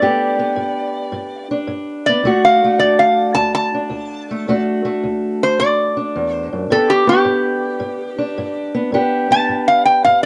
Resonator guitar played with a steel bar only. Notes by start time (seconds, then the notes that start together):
Already playing: D5
2.06 D5
2.45 F5
2.79 D5
2.99 F5
3.35 A5
3.55 A5
5.43 C5
5.60 D5
6.33 C5
6.72 A4
6.90 G4
7.09 G4
9.32 A5
9.68 F5
9.85 G5
10.04 F5